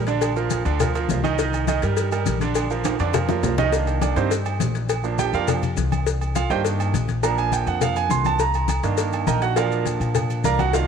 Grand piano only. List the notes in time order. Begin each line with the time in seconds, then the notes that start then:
0.07 D3 D4 D5
0.36 F3 F4 A#4
0.65 D3 D4 D5
0.80 F3 F4 A#4
0.95 F3 F4 A#4
1.24 D#3 D#4 D#5
1.39 D#3 D#4 D#5
1.68 D#3 D#4 D#5
1.83 G3 G4 A#4
2.12 G3 G4 A#4
2.41 D3 D4 D5
2.71 F3 F4 A#4
3.00 D3 D4 D5
3.14 F3 F4 A#4
3.29 F3 F4 A#4
3.58 D#3 D#4 D#5
3.72 D#3 A#3 D4
4.01 D4 D5
4.16 D#3 A#3 C4 D4 D#4 G4 C5
5.04 F3 A#3 D4
5.19 G4 G5
5.34 F4 A#4 D5 F5
5.49 F3 A#3 D4
6.36 F4 F5
6.50 D#3 A#3 D4 G4 C5 D#5 G5
7.23 F3 A#3 D4 A#5
7.38 G#5
7.53 G5
7.68 F#5
7.82 F5
7.97 G#5
8.11 C6
8.26 A5
8.41 A#5
8.83 D#3 A#3 D4
9.27 A#4 D#5 G5 A#5
9.42 F#4 F#5
9.56 F3 A#3 D4 F4 A#4 D5 F5
10.45 A#4 D5 F5 A#5
10.59 F#4 F#5
10.74 D#3 A#3 D4 F4 F5